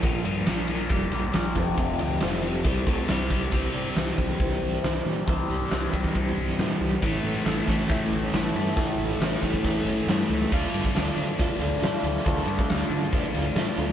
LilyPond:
<<
  \new Staff \with { instrumentName = "Reed electric piano" } { \time 4/4 \key d \minor \tempo 4 = 138 <f' bes' d''>8 r8 <f' bes' d''>4 <f' bes' d''>4 <f' bes' d''>8 <f' a' c''>8~ | <f' a' c''>8 r8 <f' a' c''>4 <e' g' c''>4 <e' g' c''>4 | <e' g' c''>4 <e' g' c''>4 <e' g' c''>4 <e' g' c''>4 | <e' g' c''>4 <e' g' c''>4 <e' g' c''>4 <e' g' c''>4 |
<e' a' cis''>4 <e' a' e''>4 <e' a' e''>4 <e' a' cis''>4 | <e' a' cis''>4 <e' a' cis''>4 <e' a' cis''>4 <e' a' cis''>4 | <f' a' d'' f''>4 <f' a' d'' f''>4 <f' a' d'' f''>4 <f' a' d'' f''>4 | <f' a' d'' f''>4 <f' a' d'' f''>4 <f' a' d'' f''>4 <f' a' d'' f''>4 | }
  \new Staff \with { instrumentName = "Overdriven electric guitar" } { \clef bass \time 4/4 \key d \minor <bes, f>8 <bes, f>8 <bes, f>8 <bes, f>8 <bes, g>8 <bes, g>8 <bes, f>8 <f, c>8 | <f, c>8 <f, c>8 <f, c>8 <f, c>8 <c g>8 <c a>8 <c g>8 <c g>8 | c8 g8 e8 c'8 g8 c'8 e8 g8 | c8 g8 e8 c'8 g8 c'8 e8 g8 |
a,8 a8 e8 cis'8 a8 cis'8 e8 a8 | a,8 a8 e8 cis'8 a8 cis'8 e8 a8 | <d a d' f'>4 <d a d' f'>4 <d a d' f'>8 <a d' f'>8 <d a d' f'>8 <a d' f'>8 | <d a d' f'>4 <d a d' f'>4 <d a d' f'>8 <a d' f'>8 <d a d' f'>8 <a d' f'>8 | }
  \new Staff \with { instrumentName = "Overdriven electric guitar" } { \clef bass \time 4/4 \key d \minor r1 | r1 | r1 | r1 |
<a, e a>4 <a, e a>8 <a, e a>8 <a, e a>4 <a, e a>8 <a, e a>8 | <a, e a>4 <a, e a>8 <a, e a>8 <a, e a>4 <a, e a>8 <a, e a>8 | r1 | r1 | }
  \new Staff \with { instrumentName = "Overdriven electric guitar" } { \clef bass \time 4/4 \key d \minor <bes, f>8 <bes, f>8 <bes, f>8 <bes, f>8 <bes, g>8 <bes, g>8 <bes, f>8 <f, c>8 | <f, c>8 <f, c>8 <f, c>8 <f, c>8 <c g>8 <c a>8 <c g>8 <c g>8 | <c g c'>1 | <c g c'>1 |
<a, e a>1 | <a, e a>1 | <d a d'>1 | <d a d'>1 | }
  \new Staff \with { instrumentName = "Fingered electric bass" } { \clef bass \time 4/4 \key d \minor bes,,8 g,8 bes,,4 f,,8 bes,,8 bes,,8 f,,8 | f,,8 d,8 f,,4 c,8 c,8 c,4 | c,8 c8 c,8 c,8 c,8 c,8 c,8 bes,8 | c,8 c,8 c,8 c,8 c,8 c,8 bes,8 c,8 |
a,,8 a,8 a,,8 a,,8 a,,8 a,,8 a,,8 g,8 | a,,8 a,,8 a,,8 a,,8 a,,8 a,,8 g,8 cis,8 | d,8 g,8 d,8 d8 a,,8 d,8 a,8 d,8 | d,8 g,8 d,8 d8 a,,8 d,8 a,8 d,8 | }
  \new DrumStaff \with { instrumentName = "Drums" } \drummode { \time 4/4 <bd cymr>8 cymr8 <cymr sn>8 cymr8 <bd cymr>8 cymr8 <cymr sn>8 <bd cymr>8 | <bd cymr>8 cymr8 <cymr sn>8 cymr8 <bd cymr>8 <bd cymr>8 <cymr sn>8 <bd cymr>8 | <cymc bd>8 hho8 <hho sn>8 <hho bd>8 <hho bd>8 hho16 sn16 <hho sn>8 hho8 | <hho bd>8 hho8 <hho sn>8 <hho bd>16 bd16 <hho bd>8 hho16 sn16 <hho sn>8 hho8 |
<hho bd>8 hho16 sn16 <hho sn>8 <hho bd>8 <hho bd>8 hho8 <hho sn>8 hho8 | <hho bd>8 hho16 sn16 <hho sn>8 <hho bd>16 bd16 <hho bd>8 hho8 <hho sn>8 hho8 | <cymc bd>8 cymr16 bd16 <cymr sn>8 cymr8 <bd cymr>8 cymr8 <cymr sn>8 cymr8 | <bd cymr>8 cymr16 bd16 <cymr sn>8 cymr8 <bd cymr>8 cymr8 <cymr sn>8 cymr8 | }
>>